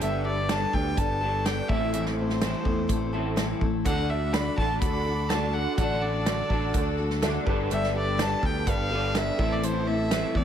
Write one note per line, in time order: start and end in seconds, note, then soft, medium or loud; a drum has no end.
0.00 0.65 G1 loud
0.00 0.47 G3 medium
0.00 0.25 G3 medium
0.00 0.49 B3 medium
0.00 0.25 B3 medium
0.00 0.48 D4 medium
0.00 0.26 D4 medium
0.00 0.25 G4 medium
0.00 0.51 A4 medium
0.00 0.23 A4 medium
0.00 0.24 E5 medium
0.00 closed hi-hat medium
0.24 0.50 D4 soft
0.24 0.50 G4 soft
0.24 0.49 A4 soft
0.24 0.51 D5 medium
0.49 0.74 G3 medium
0.49 0.74 B3 medium
0.49 0.74 D4 medium
0.49 0.73 G4 medium
0.49 0.72 A4 medium
0.49 0.76 A5 loud
0.49 snare loud
0.49 closed hi-hat medium
0.73 0.95 D2 medium
0.73 0.97 D4 soft
0.73 0.98 G4 soft
0.73 0.98 A4 medium
0.73 1.00 G5 medium
0.73 kick medium
0.97 1.60 G1 medium
0.97 1.22 B3 medium
0.97 1.22 D4 medium
0.97 1.21 G4 medium
0.97 1.20 A4 medium
0.97 1.47 A5 medium
0.97 kick medium
0.97 closed hi-hat medium
1.21 1.70 G3 medium
1.21 1.69 B3 medium
1.21 1.46 D4 soft
1.21 1.46 G4 soft
1.21 1.46 A4 medium
1.46 1.70 G3 medium
1.46 1.71 B3 medium
1.46 1.71 D4 medium
1.46 1.71 G4 medium
1.46 1.69 A4 medium
1.46 1.70 G5 medium
1.46 snare medium
1.46 closed hi-hat medium
1.68 2.53 A1 medium
1.68 2.39 A2 medium
1.68 2.40 E3 medium
1.68 1.94 C4 soft
1.68 1.94 E4 soft
1.68 1.94 A4 medium
1.68 1.93 E5 medium
1.68 kick medium
1.73 1.93 A3 soft
1.93 2.18 A2 medium
1.93 2.18 E3 medium
1.93 2.18 A3 medium
1.93 2.18 C4 medium
1.93 2.17 E4 medium
1.93 2.17 A4 medium
1.93 2.04 E5 medium
1.93 closed hi-hat medium
2.06 snare soft
2.18 2.41 A3 soft
2.18 2.41 C4 soft
2.18 2.41 E4 soft
2.18 2.42 A4 soft
2.18 3.10 C5 medium
2.30 snare soft
2.41 2.66 A2 medium
2.41 2.66 E3 medium
2.41 2.66 A3 medium
2.41 2.65 C4 medium
2.41 2.65 E4 medium
2.41 2.64 A4 medium
2.41 snare loud
2.41 closed hi-hat medium
2.65 2.87 E2 medium
2.65 2.86 A3 soft
2.65 2.87 C4 soft
2.65 2.88 E4 soft
2.65 2.89 A4 soft
2.65 kick medium
2.88 3.52 A1 medium
2.88 3.13 A3 medium
2.88 3.12 C4 medium
2.88 3.12 E4 medium
2.88 3.11 A4 medium
2.88 kick medium
2.88 closed hi-hat medium
3.12 3.62 E3 medium
3.12 3.36 A3 soft
3.12 3.36 C4 medium
3.12 3.36 E4 soft
3.12 3.36 A4 medium
3.17 3.62 A2 medium
3.36 3.61 A2 medium
3.36 3.61 E3 medium
3.36 3.61 A3 medium
3.36 3.61 C4 medium
3.36 3.61 E4 medium
3.36 3.60 A4 medium
3.36 snare medium
3.36 closed hi-hat medium
3.61 3.83 A1 medium
3.61 3.85 A3 soft
3.61 3.86 C4 medium
3.61 3.86 E4 medium
3.61 3.86 A4 medium
3.61 kick medium
3.85 4.49 D2 medium
3.85 4.10 D3 medium
3.85 4.10 A3 medium
3.85 4.11 D4 medium
3.85 4.22 F#4 medium
3.85 4.10 F#4 medium
3.85 4.23 A4 medium
3.85 9.35 A4 medium
3.85 4.09 A4 medium
3.85 4.23 D5 medium
3.85 4.12 F#5 medium
3.85 5.76 D6 medium
3.85 kick medium
3.85 closed hi-hat medium
4.10 4.34 D4 soft
4.10 4.34 F#4 soft
4.10 4.34 A4 medium
4.10 4.35 E5 medium
4.32 4.58 D3 medium
4.32 4.58 A3 medium
4.32 4.59 D4 medium
4.32 4.70 F#4 medium
4.32 4.58 F#4 medium
4.32 4.70 A4 medium
4.32 4.57 A4 medium
4.32 4.70 D5 medium
4.32 4.58 B5 medium
4.32 snare loud
4.32 closed hi-hat medium
4.58 4.79 A1 medium
4.58 5.29 D3 medium
4.58 4.81 D4 soft
4.58 4.82 F#4 medium
4.58 4.82 A4 medium
4.58 4.80 A5 medium
4.58 kick medium
4.81 5.66 D2 medium
4.81 5.06 A3 medium
4.81 5.06 D4 medium
4.81 5.19 F#4 medium
4.81 5.06 F#4 medium
4.81 5.19 A4 medium
4.81 5.04 A4 medium
4.81 5.19 D5 medium
4.81 5.30 B5 loud
4.81 kick loud
4.81 closed hi-hat medium
5.05 5.30 D4 soft
5.05 5.31 F#4 soft
5.05 5.30 A4 soft
5.29 5.55 D3 medium
5.29 5.55 A3 medium
5.29 5.55 D4 medium
5.29 5.67 F#4 medium
5.29 5.54 F#4 medium
5.29 5.67 A4 medium
5.29 5.53 A4 medium
5.29 5.67 D5 medium
5.29 5.55 A5 medium
5.29 snare medium
5.29 closed hi-hat medium
5.53 5.78 D4 soft
5.53 5.78 F#4 soft
5.53 5.78 A4 medium
5.53 5.77 F#5 medium
5.77 6.41 A1 loud
5.77 6.02 D3 medium
5.77 6.02 A3 medium
5.77 6.03 D4 medium
5.77 6.15 F#4 medium
5.77 6.02 F#4 medium
5.77 6.15 A4 medium
5.77 6.01 A4 medium
5.77 6.15 D5 medium
5.77 6.03 F#5 medium
5.77 7.45 E6 medium
5.77 kick loud
5.77 closed hi-hat medium
6.02 6.25 D4 soft
6.02 6.26 F#4 soft
6.02 6.25 A4 soft
6.02 6.98 D5 medium
6.25 6.50 D3 medium
6.25 6.50 A3 medium
6.25 6.51 D4 medium
6.25 6.63 F#4 medium
6.25 6.51 F#4 medium
6.25 6.63 A4 medium
6.25 6.49 A4 medium
6.25 6.63 D5 medium
6.25 snare loud
6.25 closed hi-hat medium
6.50 6.71 A1 medium
6.50 7.21 D3 medium
6.50 6.73 D4 soft
6.50 6.73 F#4 soft
6.50 6.75 A4 medium
6.50 kick medium
6.73 7.37 D2 medium
6.73 6.98 A3 medium
6.73 6.98 D4 medium
6.73 7.11 F#4 medium
6.73 6.98 F#4 medium
6.73 7.11 A4 medium
6.73 6.97 A4 medium
6.73 7.12 D5 medium
6.73 kick loud
6.73 closed hi-hat medium
6.98 7.21 D4 soft
6.98 7.22 F#4 medium
6.98 7.22 A4 medium
7.10 snare soft
7.21 7.46 D3 medium
7.21 7.46 A3 medium
7.21 7.46 D4 medium
7.21 7.47 F#4 medium
7.21 7.45 A4 medium
7.21 7.45 A4 loud
7.21 7.47 E5 medium
7.21 snare medium
7.21 closed hi-hat medium
7.45 7.68 G1 medium
7.45 8.16 G3 medium
7.45 8.18 B3 medium
7.45 7.70 D4 soft
7.45 8.04 G4 medium
7.45 7.70 G4 medium
7.45 7.70 A4 medium
7.45 8.05 A4 medium
7.45 8.05 B4 medium
7.45 9.37 G5 medium
7.45 9.37 B5 medium
7.45 kick medium
7.70 8.34 G1 loud
7.70 7.95 G3 medium
7.70 7.95 B3 medium
7.70 7.94 D4 medium
7.70 7.93 G4 medium
7.70 7.91 A4 medium
7.70 7.94 E5 medium
7.70 closed hi-hat medium
7.84 snare soft
7.92 8.17 D4 soft
7.92 8.17 G4 medium
7.92 8.18 A4 medium
7.97 8.23 D5 medium
8.17 8.42 G3 medium
8.17 8.42 B3 medium
8.17 8.42 D4 medium
8.17 8.42 G4 medium
8.17 8.56 G4 medium
8.17 8.41 A4 medium
8.17 8.56 A4 medium
8.17 8.56 B4 medium
8.17 snare loud
8.17 closed hi-hat medium
8.21 8.47 A5 loud
8.42 8.64 D2 medium
8.42 8.66 D4 soft
8.42 8.67 G4 soft
8.42 8.67 A4 medium
8.42 8.71 G5 medium
8.42 kick medium
8.66 9.30 G1 medium
8.66 8.91 B3 medium
8.66 8.91 D4 medium
8.66 9.04 G4 medium
8.66 8.90 G4 medium
8.66 9.04 A4 medium
8.66 8.88 A4 medium
8.66 9.04 B4 medium
8.66 9.19 F5 loud
8.66 kick loud
8.66 closed hi-hat medium
8.90 9.38 B3 medium
8.90 9.15 D4 soft
8.90 9.15 G4 soft
8.90 9.14 A4 medium
8.94 9.39 G3 medium
9.15 9.39 G3 medium
9.15 9.40 B3 medium
9.15 9.39 D4 medium
9.15 9.39 G4 medium
9.15 9.36 A4 medium
9.15 9.37 A4 medium
9.15 9.40 B4 medium
9.15 9.54 E5 loud
9.15 snare loud
9.15 closed hi-hat medium
9.38 10.23 A1 medium
9.38 10.10 A2 medium
9.38 10.10 E3 medium
9.38 9.62 A3 soft
9.38 9.62 C4 soft
9.38 9.97 E4 medium
9.38 9.63 E4 medium
9.38 9.96 A4 medium
9.38 9.63 A4 medium
9.38 10.44 A4 medium
9.38 9.97 C5 medium
9.38 10.44 E5 medium
9.38 10.44 A5 medium
9.38 kick medium
9.43 10.12 A4 medium
9.53 9.66 D5 medium
9.62 9.87 A2 medium
9.62 9.87 E3 medium
9.62 9.87 A3 medium
9.62 9.87 C4 medium
9.62 9.86 E4 medium
9.62 9.84 A4 medium
9.62 9.90 C5 medium
9.62 closed hi-hat medium
9.86 10.10 A3 soft
9.86 10.11 C4 soft
9.86 10.11 E4 medium
9.86 10.11 A4 medium
9.86 10.39 E5 loud
10.11 10.35 A2 medium
10.11 10.35 E3 medium
10.11 10.36 A3 medium
10.11 10.36 C4 medium
10.11 10.44 E4 medium
10.11 10.35 E4 medium
10.11 10.44 A4 medium
10.11 10.34 A4 medium
10.11 10.44 B4 medium
10.11 snare loud
10.11 closed hi-hat medium
10.35 10.44 E2 medium
10.35 10.44 A3 soft
10.35 10.44 C4 soft
10.35 10.44 E4 medium
10.35 10.44 A4 soft
10.35 10.44 D5 medium
10.35 kick medium